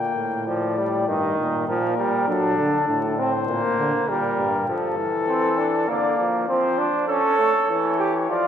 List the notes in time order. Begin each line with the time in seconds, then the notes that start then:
Already playing: A#2 A#3 G5
0.16 A2
0.47 F3 D5
0.78 G3
1.08 G2 D#3 D#5
1.38 A#2
1.68 A#2 F3 A#4
1.98 G3
2.28 F#3 D4 A4
2.58 D3
2.88 A2 A4
3.18 C4 C5
3.48 A#2 A#3
3.78 D3
4.08 A#2 G3 A#4
4.39 G2
4.69 F3 A4
4.98 E3
5.28 C4
5.58 D4
5.88 D3 A#3 D5
6.19 F3
6.48 F3 C4 C5
6.78 D4
7.08 C#4 A4 C#5
7.39 A3
7.69 E3 C#5
7.99 G4
8.30 F3 F4 D5